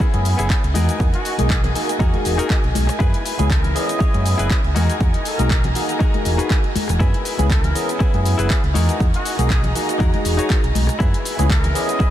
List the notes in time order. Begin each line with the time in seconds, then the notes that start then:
Already playing: B3 C#4 E4 G#4 G#5
0.00 B3 E4 G#4, muted fingered electric bass stroke, kick, shaker
0.13 F#2 B3 C#4 E4 G#4, closed hi-hat, high conga
0.25 open hi-hat, shaker
0.38 F#1 B3 E4 G#4, closed hi-hat, shaker
0.50 B3 C#4 E4 G#4, kick, clap, shaker
0.64 C#2, closed hi-hat
0.74 E2 D#4 F#4 G#4 A#4 D#5, open hi-hat, high conga, shaker
0.89 closed hi-hat, shaker
1.00 E2 A#3 D#4 F#4 G#4, kick, shaker
1.14 F#4, closed hi-hat
1.25 open hi-hat, shaker
1.38 B1 A#3 D#4 F#4 G#4, closed hi-hat, high conga, shaker
1.50 G#4, kick, clap, shaker
1.63 G#4, closed hi-hat, low conga, shaker
1.75 A#3 D#4 F#4 G#4, open hi-hat, shaker
1.88 muted clean electric guitar stroke, closed hi-hat, shaker
1.99 E2 D#4 F#4 G#4 A#4, kick, shaker
2.13 A#3 D#4 F#4 G#4, closed hi-hat, high conga
2.24 E1, open hi-hat, shaker
2.26 shaker
2.38 D#4 F#4 G#4 A#4, closed hi-hat, shaker
2.50 A#3 D#4 F#4 G#4, kick, clap, shaker
2.64 B1, closed hi-hat
2.74 B1, muted clean electric guitar stroke, open hi-hat, high conga, shaker
2.87 muted clean electric guitar stroke, closed hi-hat, shaker
2.99 F#2 B3 C#4 E4 G#4 B4, kick, shaker
3.14 closed hi-hat
3.26 open hi-hat, shaker
3.39 C#2 B3 C#4 E4 G#4, closed hi-hat, high conga, shaker
3.50 A#4, kick, clap, shaker
3.64 closed hi-hat, low conga, shaker
3.74 B3 C#4 E4 G#4 D#5, open hi-hat, shaker
3.88 muted clean electric guitar stroke, closed hi-hat, shaker
3.99 E4 G#4 C#5, muted fingered electric bass stroke, kick, shaker
4.14 F#2 B3 C#4 E4 G#4, closed hi-hat, high conga
4.26 open hi-hat, shaker
4.38 F#1 E4 G#4 B4, closed hi-hat, shaker
4.50 B3 C#4 E4 G#4, kick, clap, shaker
4.64 C#2, closed hi-hat
4.74 E2 D#4 F#4 G#4 A#4 D#5 A#5, open hi-hat, high conga, shaker
4.90 closed hi-hat, shaker
5.00 E2 A#3 D#4 F#4 G#4, kick, shaker
5.14 closed hi-hat, shaker
5.25 A#4, open hi-hat, shaker
5.39 B1 A#3 D#4 F#4 G#4, closed hi-hat, high conga, shaker
5.50 kick, clap, shaker
5.63 closed hi-hat, low conga, shaker
5.75 A#3 D#4 F#4 G#4, open hi-hat, shaker
5.88 muted clean electric guitar stroke, closed hi-hat, shaker
5.99 D#4 F#4 G#4 A#4, kick, shaker
6.14 A#3 D#4 F#4 G#4, closed hi-hat, high conga
6.25 E1, open hi-hat, shaker
6.38 D#4 F#4 G#4 B4, closed hi-hat, shaker
6.50 A#3 D#4 F#4 G#4, kick, clap, shaker
6.64 closed hi-hat
6.74 muted clean electric guitar stroke, muted fingered electric bass stroke, open hi-hat, high conga, shaker
6.88 E1, muted clean electric guitar stroke, closed hi-hat, shaker
7.00 F#2 B3 C#4 E4 G#4 B4, kick, shaker
7.14 closed hi-hat
7.25 open hi-hat, shaker
7.38 C#2 B3 C#4 E4 G#4, closed hi-hat, high conga, shaker
7.50 A#4, kick, clap, shaker
7.63 closed hi-hat, low conga, shaker
7.75 B3 C#4 E4 G#4, open hi-hat, shaker
7.88 muted clean electric guitar stroke, closed hi-hat, shaker
7.99 E4 G#4 B4, muted fingered electric bass stroke, kick, shaker
8.13 F#2 B3 C#4 E4 G#4, closed hi-hat, high conga
8.25 open hi-hat, shaker
8.38 F#1 E4 G#4 B4, closed hi-hat, shaker
8.50 B3 C#4 E4 G#4, kick, clap, shaker
8.63 C#2, closed hi-hat
8.74 E2 D#4 F#4 G#4 A#4 D#5 A#5, open hi-hat, high conga, shaker
8.89 closed hi-hat, shaker
9.00 E2 A#3 D#4 F#4 G#4, kick, shaker
9.14 F#4, closed hi-hat
9.25 open hi-hat, shaker
9.39 B1 A#3 D#4 F#4 G#4, closed hi-hat, high conga, shaker
9.49 G#4, kick, clap, shaker
9.64 G#4, closed hi-hat, low conga, shaker
9.75 A#3 D#4 F#4 G#4, open hi-hat, shaker
9.87 muted clean electric guitar stroke, closed hi-hat, shaker
9.99 E2 D#4 F#4 G#4 A#4, kick, shaker
10.14 D#4 F#4 G#4, closed hi-hat, high conga
10.25 E1, open hi-hat, shaker
10.37 D#4 F#4 G#4 C#5, closed hi-hat, shaker
10.50 A#3 D#4 F#4 G#4, kick, clap, shaker
10.64 B1, closed hi-hat
10.74 B1, muted clean electric guitar stroke, open hi-hat, high conga, shaker
10.87 muted clean electric guitar stroke, closed hi-hat, shaker
10.99 F#2 B3 C#4 E4 G#4 B4 G#5, kick, shaker
11.14 closed hi-hat
11.25 open hi-hat, shaker
11.38 C#2 B3 C#4 E4 G#4, closed hi-hat, high conga, shaker
11.50 A#4, kick, clap, shaker
11.64 closed hi-hat, low conga, shaker
11.74 B3 C#4 E4 G#4 D#5, open hi-hat, shaker
11.88 muted clean electric guitar stroke, closed hi-hat, shaker
11.99 E4 G#4 B4, muted fingered electric bass stroke, kick, shaker